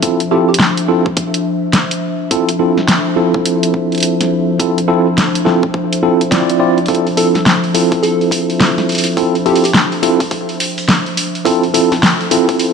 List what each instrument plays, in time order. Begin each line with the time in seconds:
Already playing: ambient pad F3 D4 C5 E5
0.02 tine electric piano C4 E4 F4 A4, kick, closed hi-hat
0.20 closed hi-hat
0.31 tine electric piano C4 E4 F4 A4, digital synth lead G4
0.49 digital synth lead G4
0.54 closed hi-hat
0.59 snare
0.77 closed hi-hat
0.88 tine electric piano C4 E4 F4 A4
1.06 kick
1.17 kick, closed hi-hat
1.34 closed hi-hat
1.73 snare, closed hi-hat
1.91 closed hi-hat
2.31 tine electric piano C4 E4 F4 A4, kick, closed hi-hat
2.49 closed hi-hat
2.59 tine electric piano C4 E4 F4 A4
2.77 snare
2.88 snare, closed hi-hat
3.16 tine electric piano C4 E4 F4 A4
3.34 kick
3.46 closed hi-hat
3.63 closed hi-hat
3.74 kick
3.92 closed hi-hat
3.95 closed hi-hat
3.98 closed hi-hat
4.00 closed hi-hat
4.03 closed hi-hat
4.21 snare, closed hi-hat
4.60 tine electric piano C4 E4 F4 A4, kick, closed hi-hat
4.78 closed hi-hat
4.88 tine electric piano C4 E4 F4 A4
5.18 snare, closed hi-hat
5.35 closed hi-hat
5.45 tine electric piano C4 E4 F4 A4, snare
5.63 kick
5.74 kick
5.93 closed hi-hat
6.03 tine electric piano C4 E4 F4 A4
6.21 closed hi-hat
6.31 tine electric piano C4 E4 F4 D5, snare, closed hi-hat
6.50 closed hi-hat
6.59 tine electric piano C4 E4 F4 D5
6.78 closed hi-hat
6.86 tine electric piano C4 E4 F4 A4, kick, closed hi-hat, open hi-hat
6.95 closed hi-hat
7.07 open hi-hat
7.17 tine electric piano C4 E4 F4 A4, digital synth lead A4, open hi-hat
7.34 digital synth lead A4, snare, open hi-hat
7.46 snare, open hi-hat
7.64 open hi-hat
7.74 tine electric piano C4 E4 F4 A4, open hi-hat
7.92 kick, open hi-hat
8.03 digital synth lead A4, open hi-hat
8.21 open hi-hat
8.31 kick, open hi-hat
8.50 open hi-hat
8.60 snare, open hi-hat
8.78 snare, open hi-hat
8.89 open hi-hat
8.92 open hi-hat
8.95 open hi-hat
8.98 open hi-hat
9.04 open hi-hat
9.07 open hi-hat
9.17 tine electric piano C4 E4 F4 A4, kick, open hi-hat
9.35 open hi-hat
9.46 tine electric piano C4 E4 F4 A4, digital synth lead G4, open hi-hat
9.56 open hi-hat
9.64 digital synth lead G4, open hi-hat
9.74 snare, open hi-hat
9.92 open hi-hat
10.03 tine electric piano C4 E4 F4 A4, open hi-hat
10.20 kick, open hi-hat
10.31 kick, open hi-hat
10.49 open hi-hat
10.60 open hi-hat
10.78 open hi-hat
10.89 snare, open hi-hat
11.06 open hi-hat
11.17 open hi-hat
11.35 open hi-hat
11.45 tine electric piano C4 E4 F4 A4, kick, open hi-hat
11.63 open hi-hat
11.74 tine electric piano C4 E4 F4 A4, open hi-hat
11.92 snare, open hi-hat
12.03 snare, open hi-hat
12.21 open hi-hat
12.31 tine electric piano C4 E4 F4 A4, open hi-hat
12.49 kick, open hi-hat
12.59 open hi-hat